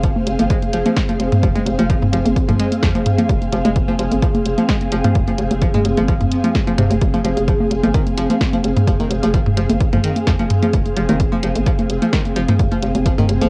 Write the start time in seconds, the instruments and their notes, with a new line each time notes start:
Already playing: ambient pad C4 G#4 F5
0.03 synth pluck F3, kick, closed hi-hat
0.16 high conga
0.27 fm bass F1, closed hi-hat
0.39 fm bass G1, synth pluck F3, closed hi-hat, high conga
0.50 synth pluck G#3, kick, closed hi-hat
0.62 closed hi-hat, high conga
0.73 fm bass F1, synth pluck F3, closed hi-hat
0.86 synth pluck F3, closed hi-hat, high conga
0.96 kick, snare, closed hi-hat
1.09 synth pluck F3, closed hi-hat, high conga
1.20 fm bass F1, closed hi-hat
1.32 closed hi-hat, mid tom, high conga
1.43 fm bass F1, synth pluck F3, kick, closed hi-hat
1.56 synth pluck G#3, closed hi-hat, high conga
1.66 fm bass F1, closed hi-hat
1.79 fm bass F1, synth pluck F3, closed hi-hat, high conga
1.90 synth pluck F3, kick, closed hi-hat
2.02 mid tom, high conga
2.13 fm bass F1, synth pluck F3, closed hi-hat
2.25 fm bass G1, closed hi-hat, high conga
2.36 kick, closed hi-hat
2.48 fm bass G1, synth pluck F3, closed hi-hat, mid tom, high conga
2.60 synth pluck G#3, closed hi-hat
2.72 closed hi-hat, high conga
2.83 fm bass F2, synth pluck F3, kick, snare, closed hi-hat
2.95 synth pluck F3, closed hi-hat, high conga
3.06 closed hi-hat, mid tom
3.18 synth pluck F3, closed hi-hat, high conga
3.29 fm bass F1, kick, closed hi-hat
3.42 closed hi-hat, high conga
3.52 fm bass F1, synth pluck F3, closed hi-hat
3.65 fm bass F1, synth pluck G#3, closed hi-hat, high conga
3.76 kick, closed hi-hat
3.88 synth pluck F3, high conga
3.99 fm bass F1, synth pluck F3, closed hi-hat
4.11 fm bass G1, closed hi-hat, high conga
4.22 synth pluck F3, kick, closed hi-hat
4.35 closed hi-hat, high conga
4.46 fm bass F1, closed hi-hat
4.58 synth pluck F3, closed hi-hat, high conga
4.69 synth pluck G#3, kick, snare, closed hi-hat
4.81 closed hi-hat, high conga
4.92 fm bass F1, synth pluck F3, closed hi-hat
5.04 synth pluck F3, closed hi-hat, mid tom, high conga
5.15 fm bass F1, kick, closed hi-hat
5.28 synth pluck F3, closed hi-hat, high conga
5.38 fm bass F1, closed hi-hat
5.51 fm bass F1, closed hi-hat, high conga
5.62 synth pluck F3, kick, closed hi-hat
5.74 synth pluck G#3, closed hi-hat, mid tom, high conga
5.85 fm bass F1, closed hi-hat
5.97 fm bass G1, synth pluck F3, closed hi-hat, high conga
6.08 synth pluck F3, kick, closed hi-hat
6.21 fm bass F2, closed hi-hat, mid tom, high conga
6.32 closed hi-hat
6.44 synth pluck F3, closed hi-hat, high conga
6.55 synth pluck G#3, kick, snare, closed hi-hat
6.67 synth pluck F3, closed hi-hat, high conga
6.78 fm bass F1, synth pluck C3, closed hi-hat, mid tom
6.90 fm bass F1, closed hi-hat, high conga
7.01 fm bass F1, kick, closed hi-hat
7.14 synth pluck F3, closed hi-hat, high conga
7.24 fm bass F1, synth pluck F3, closed hi-hat
7.37 fm bass F1, closed hi-hat, high conga
7.48 synth pluck F3, kick, closed hi-hat
7.60 high conga
7.71 fm bass F1, closed hi-hat
7.83 fm bass G1, synth pluck F3, closed hi-hat, high conga
7.94 synth pluck D#3, kick, closed hi-hat
8.07 closed hi-hat, high conga
8.17 fm bass F1, synth pluck F3, closed hi-hat
8.30 synth pluck F3, closed hi-hat, high conga
8.41 kick, snare, closed hi-hat
8.53 synth pluck F3, closed hi-hat, high conga
8.64 fm bass F1, closed hi-hat
8.77 closed hi-hat, mid tom, high conga
8.87 fm bass F1, synth pluck F3, kick, closed hi-hat
9.00 synth pluck D#3, closed hi-hat, high conga
9.11 fm bass F1, closed hi-hat
9.23 fm bass F1, synth pluck F3, closed hi-hat, high conga
9.34 synth pluck F3, kick, closed hi-hat
9.46 mid tom, high conga
9.57 fm bass F1, synth pluck F3, closed hi-hat
9.70 fm bass G1, closed hi-hat, high conga
9.80 kick, closed hi-hat
9.93 fm bass G1, synth pluck F3, closed hi-hat, mid tom, high conga
10.04 synth pluck D#3, closed hi-hat
10.16 closed hi-hat, high conga
10.27 fm bass F2, synth pluck F3, kick, snare, closed hi-hat
10.39 synth pluck F3, closed hi-hat, high conga
10.50 closed hi-hat, mid tom
10.62 synth pluck F3, closed hi-hat, high conga
10.73 fm bass F1, kick, closed hi-hat
10.86 closed hi-hat, high conga
10.97 fm bass F1, synth pluck F3, closed hi-hat
11.09 fm bass F1, synth pluck D#3, closed hi-hat, high conga
11.20 kick, closed hi-hat
11.32 synth pluck F3, high conga
11.43 fm bass F1, synth pluck F3, closed hi-hat
11.56 fm bass G1, closed hi-hat, high conga
11.66 synth pluck F3, kick, closed hi-hat
11.79 closed hi-hat, high conga
11.90 fm bass F1, closed hi-hat
12.02 synth pluck F3, closed hi-hat, high conga
12.13 synth pluck D#3, kick, snare, closed hi-hat
12.25 closed hi-hat, high conga
12.36 fm bass F1, synth pluck F3, closed hi-hat
12.49 synth pluck F3, closed hi-hat, mid tom, high conga
12.59 fm bass F1, kick, closed hi-hat
12.72 synth pluck F3, closed hi-hat, high conga
12.83 fm bass F1, closed hi-hat
12.95 fm bass F1, closed hi-hat, high conga
13.06 synth pluck F3, kick, closed hi-hat
13.18 synth pluck D#3, mid tom, high conga
13.29 fm bass F1, closed hi-hat
13.41 fm bass G1, synth pluck F3, closed hi-hat, high conga